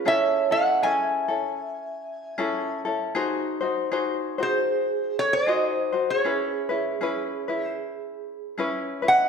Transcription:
Already playing: C#5
0.05 C#4 E4 G#4 A4 C#5 E5
0.51 C#4 E4 A4 D#5 F#5
0.82 C#4 E4 G#4 A4 E5 G#5
1.28 C#4 E4 A4
2.38 C#4 E4 G#4 A4
2.85 C#4 E4 A4
3.15 D#4 F#4 G#4 C5
3.61 D#4 F#4 C5
3.91 D#4 F#4 G#4 C5
4.38 D#4 F#4 G#4 C5
4.43 C5
5.19 C#5
5.33 C5 D#5
5.47 D#4 F#4 G#4 C5
5.92 D#4 F#4 C5
6.10 G#4 C#5
6.25 C#4 E4 G#4 B4
6.69 C#4 E4 B4
7.01 C#4 E4 G#4 B4
7.48 C#4 E4 B4
7.63 C5
8.58 C#4 E4 G#4 B4
9.02 C#4 E4 B4
9.08 D#5 F#5

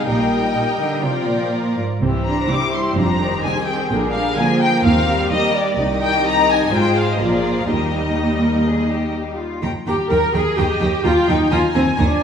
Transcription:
0.07 A#1 A#2 G3 D#4 A#4 D#5 G5
0.55 A#2
0.80 D3
1.04 C3 F3 F4 A#4 D5
1.28 A#2
1.77 G#2
2.01 C2 C3 E3 C4 G4 C5
2.25 D4 A#5
2.49 C2 G3 E4 G4 D6
2.73 C6
2.95 F1 F2 F3 D4 A#5
3.20 D#3
3.43 C2 C4 G#4 G#5
3.66 G5
3.90 A#1 A#2 D3 D4 A#4
4.12 G3 F5
4.37 D3 F3 A#3 G#4 A#4 G#5
4.60 G5
4.83 D#2 D#3 C4 G4 A#4 F5
5.09 G3
5.31 D#3 G3 A#3 G4 A#4 D#5
5.55 D5
5.77 C2 D#3 D#4 G4 D#5
6.01 G5
6.27 A#5
6.50 G#5
6.71 G#1 G#2 G#3 F4 G#4 C5 G5
6.96 F5
7.11 D#5
7.19 A#1 A#2 F3 F4 G#4 A#4 D5
7.34 D5
7.57 F5
7.67 D#2 G3 D#4 G4 A#4
7.71 D#5
8.17 G4
8.40 A#4
8.65 G#4
8.89 G4
9.38 F4
9.62 D#2 D#3 G5 A#5
9.86 D#2 D#3 G4 G5 A#5
10.10 D#2 D#3 A#4 G5 A#5
10.33 D#2 D#3 G#4 G5 A#5
10.57 D#2 D#3 G4 D#5 G5 A#5
10.80 D#2 D#3 G5 A#5
11.04 D#2 D#3 F4 G5 A#5
11.28 D#2 D#3 D#4 G5 A#5
11.51 D#2 D#3 F4 G#5 A#5
11.74 D#2 D#3 C4 G#5 A#5
11.97 D#2 D#3 D4 G#5 A#5

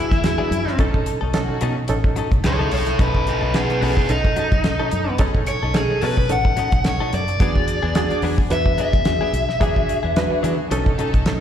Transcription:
Already playing: F#3 B3 D4 E4
0.11 E2, muted clean electric guitar stroke, kick, closed hi-hat
0.24 D4 F#4 G#4, snare, closed hi-hat
0.38 F#3 B3 D4 G#4
0.51 F#2, muted clean electric guitar stroke, closed hi-hat
0.66 muted clean electric guitar stroke, snare
0.79 B1 F#3 C#4 D#4 A4, kick, closed hi-hat
0.94 kick
1.06 muted clean electric guitar stroke, closed hi-hat
1.21 B1 C#4 D#4 A4
1.34 C#4 D#4 F#4 A4, snare, closed hi-hat
1.49 muted clean electric guitar stroke
1.61 B2 F#3 C#4 D#4 A4, closed hi-hat
1.77 muted clean electric guitar stroke
1.88 A1 C#4 D#4 A4, closed hi-hat
2.04 muted clean electric guitar stroke, kick
2.16 F#3 C#4 D#4 A4, closed hi-hat
2.31 B1, muted clean electric guitar stroke, kick, closed hi-hat
2.44 C#2 C#4 D#4 G#4 A4 C#5, snare, closed hi-hat
2.59 F#3 C#4 D#4 A4
2.71 B1 A4 C#5, muted clean electric guitar stroke, open hi-hat
2.87 muted clean electric guitar stroke, snare, closed hi-hat
2.99 B1 F#3 C#4 D#4 A4 B4, kick, closed hi-hat
3.15 kick
3.27 D#4 B4, muted clean electric guitar stroke, closed hi-hat
3.41 B1 C#4 D#4 A4
3.54 B3 C#4 D#4 G#4 A4 B4, snare, closed hi-hat
3.69 muted clean electric guitar stroke, closed hi-hat
3.81 B1 F#3 B3 C#4 D#4 G#4 A4, open hi-hat
3.97 muted clean electric guitar stroke, kick
4.09 B1 C#4 D#4 A4, closed hi-hat
4.25 muted clean electric guitar stroke, kick
4.36 F#3 C#4 D#4 A4, closed hi-hat
4.52 B1, muted clean electric guitar stroke, kick, closed hi-hat
4.64 C#4 D#4 A4, snare, closed hi-hat
4.79 F#3 C#4 D#4 A4
4.91 F#2, muted clean electric guitar stroke, closed hi-hat
5.08 muted clean electric guitar stroke
5.18 B1 F#3 C#4 D#4 G#4 A4, kick, closed hi-hat
5.35 kick
5.46 C#5, muted clean electric guitar stroke, closed hi-hat
5.63 B1 C#4 D#4 A4
5.74 C#4 D#4 G#4 A4, muted clean electric guitar stroke, snare, closed hi-hat
5.91 muted clean electric guitar stroke
6.01 B2 F#3 C#4 D#4 A4 B4, open hi-hat
6.17 muted clean electric guitar stroke, kick
6.29 A1 C#4 D#4 A4 F#5, closed hi-hat
6.45 muted clean electric guitar stroke, kick
6.57 F#3 C#4 D#4 A4, closed hi-hat
6.72 B1, muted clean electric guitar stroke, kick, closed hi-hat
6.84 C#4 D#4 A4 C#5, snare, closed hi-hat
7.00 F#3 C#4 D#4 A4
7.12 F#2 D5, muted clean electric guitar stroke, closed hi-hat
7.28 muted clean electric guitar stroke, closed hi-hat
7.39 E2 F#3 B3 D4 F#4 G#4, kick, closed hi-hat
7.55 kick
7.68 muted clean electric guitar stroke, closed hi-hat
7.83 E2 B3 D4 G#4
7.94 D4 F#4 G#4, muted clean electric guitar stroke, snare, closed hi-hat
8.10 muted clean electric guitar stroke, closed hi-hat
8.22 E2 F#3 B3 D4 G#4, open hi-hat
8.38 muted clean electric guitar stroke, kick
8.50 E2 D4 F#4 B4 E5, closed hi-hat
8.66 muted clean electric guitar stroke, kick
8.78 F#3 B3 D4 G#4 E5, closed hi-hat
8.93 E2, muted clean electric guitar stroke, kick, closed hi-hat
9.05 D4 F#4 G#4, snare, closed hi-hat
9.21 F#3 B3 D4 G#4
9.33 B1, muted clean electric guitar stroke, closed hi-hat
9.49 muted clean electric guitar stroke, snare
9.60 E2 F#3 B3 D4 F#4 G#4, kick, closed hi-hat
9.76 kick
9.88 muted clean electric guitar stroke, closed hi-hat
10.03 E2 B3 D4 G#4
10.15 D4 F#4 G#4 B4, muted clean electric guitar stroke, snare, closed hi-hat
10.31 muted clean electric guitar stroke
10.43 E3 F#3 B3 D4 G#4, closed hi-hat
10.59 muted clean electric guitar stroke
10.70 B1 F#3 C#4 D#4 A4, closed hi-hat
10.86 muted clean electric guitar stroke, kick
10.98 F#3 C#4 D#4 A4, closed hi-hat
11.14 B1, muted clean electric guitar stroke, kick, closed hi-hat
11.26 C#4 D#4 A4, snare, closed hi-hat

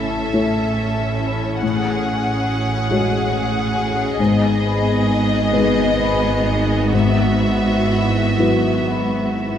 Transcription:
Already playing: A1 A2 A3 C#4 E4 A4 E5
0.33 A3 E4 C#5
0.76 C#5
1.20 E4
1.62 A2 G#4 F#5
2.06 C#4
2.49 F#4
2.91 G#3 F#4 G#4 C#5
3.33 C#5
3.75 F#4
4.18 G#1 G#2 B3 D#5
4.62 B3
5.07 D#4
5.52 G#3 D#4 G#4 B4
5.97 B4
6.44 D#4
6.92 G#2 F#4 E5
7.41 B3
7.89 E4
8.37 F#3 E4 F#4 B4
8.86 B4
9.35 E4

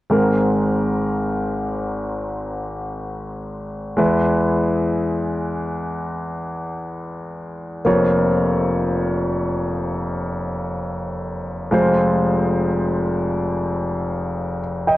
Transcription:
0.10 G#1 G#2 G#3 C4 A#4
3.97 E2 E3 G#3 E4 B4
7.85 F1 F2 A#3 F4 C#5
11.71 F1 F2 G#3 F4 C5
14.87 D#5 G5

